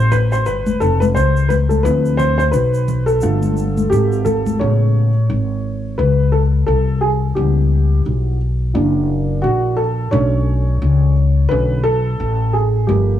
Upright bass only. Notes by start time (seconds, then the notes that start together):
Already playing: A1
0.47 G1
0.81 F1
1.16 C#2
1.85 D2
2.54 B1
3.23 G1
3.92 G#1
4.61 A1
5.30 G#1
5.99 C#2
6.68 C2
7.36 C#2
8.06 B1
8.75 F#1
9.44 A#1
10.13 B1
10.82 C#2
11.51 B1
12.20 A1
12.89 G1